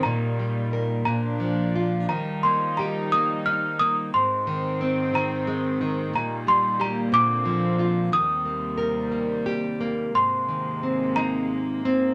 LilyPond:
<<
  \new Staff \with { instrumentName = "Celesta" } { \time 6/8 \key ees \major \tempo 4. = 59 bes''4. bes''4 r8 | bes''8 c'''8 bes''8 ees'''8 f'''8 ees'''8 | c'''4 r8 bes''4 r8 | bes''8 c'''8 bes''8 d'''4. |
ees'''2 r4 | c'''4. bes''4. | }
  \new Staff \with { instrumentName = "Nylon-string guitar" } { \time 6/8 \key ees \major bes,8 g8 bes'8 bes,8 f8 f'8 | ees8 bes8 g'8 bes8 ees'8 bes8 | aes,8 ees8 c'8 ees8 aes8 ees8 | bes,8 g8 g'8 bes,8 f8 f'8 |
ees8 bes8 bes'8 bes8 g'8 bes8 | aes,8 ees8 c'8 ees'4 c'8 | }
  \new Staff \with { instrumentName = "String section" } { \clef bass \time 6/8 \key ees \major << { <ees g>4. <f d'>4. | <g ees'>2. | <ees c'>2. | <bes, g bes>4. c'4. |
<c g>2. | <aes bes>2. | } \\ { bes,2. | r2. | aes,2. | r4. d4. |
ees,2. | c2. | } >> }
>>